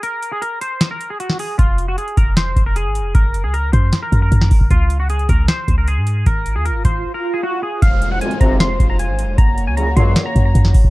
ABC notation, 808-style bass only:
X:1
M:4/4
L:1/16
Q:1/4=154
K:Fphr
V:1 name="808-style bass" clef=bass
z16 | F,,,4 z2 F,,,4 F,,,3 A,,,3/2 F,,,3/2 | G,,,3 D,,3 G,,2 z2 G,,2 G,,2 G,,,2 | D,,6 D,,2 z2 D,,3 A,,3 |
A,,,3 E,,3/2 A,,,3/2 A,,,2 z8 | F,,,4 z2 F,,,4 F,,,3 A,,,3/2 F,,,3/2 | G,,,3 D,,3 G,,2 z2 G,,2 G,,2 G,,,2 |]